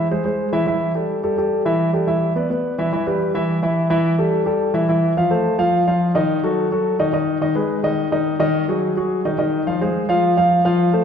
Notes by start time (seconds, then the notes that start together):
0.11 G#3 G#4 C5
0.25 G#3 G#4 C5
0.52 E3 E4 E5
0.67 E3 E4 E5
0.95 G3 G4 A4
1.23 G3 G4 A4
1.38 G3 G4 A4
1.65 E3 E4 E5
1.93 G3 G4 A4
2.07 E3 E4 E5
2.36 B3 B4 D5
2.50 B3 B4 D5
2.78 E3 E4 E5
2.93 E3 E4 E5
3.07 G3 G4 B4
3.34 E3 E4 E5
3.63 E3 E4 E5
3.90 E3 E4 E5
4.18 G3 G4 A4
4.46 G3 G4 A4
4.74 E3 E4 E5
4.89 E3 E4 E5
5.17 F3 F4 F5
5.31 A3 A4 C5
5.59 F3 F4 F5
5.87 F3 F4 F5
6.15 D#3 D#4 D#5
6.43 F#3 F#4 A4
6.72 F#3 F#4 A4
6.99 D#3 D#4 D#5
7.13 D#3 D#4 D#5
7.41 D#3 D#4 D#5
7.55 G#3 G#4 B4
7.83 D#3 D#4 D#5
8.12 D#3 D#4 D#5
8.39 D#3 D#4 D#5
8.68 F#3 F#4 G#4
8.97 F#3 F#4 G#4
9.25 D#3 D#4 D#5
9.38 D#3 D#4 D#5
9.67 F3 F4 F5
9.81 G#3 G#4 C5
10.09 F3 F4 F5
10.37 F3 F4 F5
10.65 F3 F4 F5
10.93 A3 A4 C5